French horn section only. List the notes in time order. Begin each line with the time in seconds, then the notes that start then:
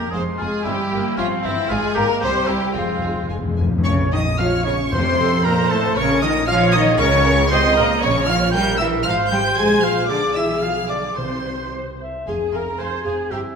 0.12 C4
0.40 G#3
0.65 G3
1.18 F3
1.44 E3
1.71 G#3
1.97 A#3
2.25 C4
2.50 G3
2.79 F3
3.87 C#4
4.13 D#4
4.41 F4
4.66 C#4
4.93 C4
5.46 A#3
5.72 A3
5.98 C#4
6.24 D#4
6.48 F4
6.76 D#4
7.02 C#4
7.52 C4
7.79 A#3
8.05 C#4
8.29 F4
8.56 G4
8.82 E4
9.08 F4
9.33 G4
9.58 G#4
9.84 F4
10.10 D4
10.36 E4
10.63 F4
10.91 D4
11.17 C4
12.30 C4 G#4
13.32 E4